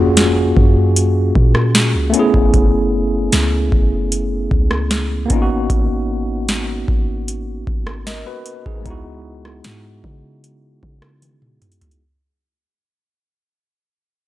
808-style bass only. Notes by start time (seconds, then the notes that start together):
Already playing: F2
0.57 F#2
1.36 A#2
1.95 C#2
2.34 F#1
2.54 F#1
3.33 C#2
3.72 F#1
4.51 C#2
5.30 G#1
5.70 G#1
6.88 G#1
7.67 G#1
8.66 G#1
8.86 C#2
9.65 G#2
10.04 C#3
10.83 C#3